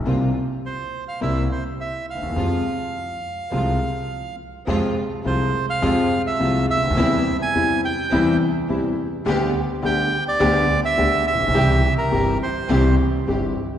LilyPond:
<<
  \new Staff \with { instrumentName = "Bandoneon" } { \time 4/4 \key f \minor \tempo 4 = 104 r4 c''8. f''16 e''8 c''8 e''8 f''8~ | f''2.~ f''8 r8 | r4 c''8. f''4 e''8. e''8~ | e''8. aes''8. g''4 r4. |
r4 g''8. d''4 e''8. e''8~ | e''8. bes'8. c''4 r4. | }
  \new Staff \with { instrumentName = "String section" } { \time 4/4 \key f \minor <bes c' f'>8 r4. <bes c' e'>8 r4. | <aes c' f'>8 r4. <aes c' f'>8 r4. | <aes c' f'>8 r8 <aes c' f'>8 r8 <aes c' f'>8 r8 <aes c' f'>8 r8 | <g c' e'>8 r8 <g c' e'>8 r8 <g c' e'>8 r8 <g c' e'>8 r8 |
<b d' g'>8 r8 <b d' g'>8 r8 <b d' g'>8 r8 <b d' g'>8 r8 | <c' e' g'>8 r8 <c' e' g'>8 r8 <c' e' g'>8 r8 <c' e' g'>8 r8 | }
  \new Staff \with { instrumentName = "Grand piano" } { \clef bass \time 4/4 \key f \minor <c, c g bes f'>8 r4. <c, c g bes e'>8 r4 r32 d,32 ees,32 e,32 | <f, c f aes f'>8 r4. <c, c f aes f'>8 r4. | <f, c f aes f'>8 r8 <c, c f aes f'>8 r8 <f, c f aes f'>8 r8 <c, c f aes f'>8 r32 des,32 d,32 ees,32 | <e, c e g e'>8 r8 <e, c e g e'>8 r8 <e, c e g e'>8 r8 <e, c e g e'>8 r8 |
<d, d g b g'>8 r8 <d, d g b g'>8 r8 <d, d g b g'>8 r8 <d, d g b g'>8 r32 a,,32 bes,,32 b,,32 | <c, c e g c' g'>8 r8 <g,, g, e g c' g'>8 r8 <c, c e g c' g'>8 r8 <g,, g, e g c' g'>8 r8 | }
  \new Staff \with { instrumentName = "Upright bass" } { \clef bass \time 4/4 \key f \minor c,16. r4. r32 c,16. r4 r16 d,32 ees,32 e,32 | f,16. r4. r32 c,16. r4. r32 | f,16. r8 r32 c,16. r8 r32 f,16. r8 r32 c,16. r16 des,32 d,32 ees,32 | e,16. r8 r32 e,16. r8 r32 e,16. r8 r32 e,16. r8 r32 |
d,16. r8 r32 d,16. r8 r32 d,16. r8 r32 d,16. r16 a,,32 bes,,32 b,,32 | c,16. r8 r32 g,,16. r8 r32 c,16. r8 r32 g,,16. r8 r32 | }
>>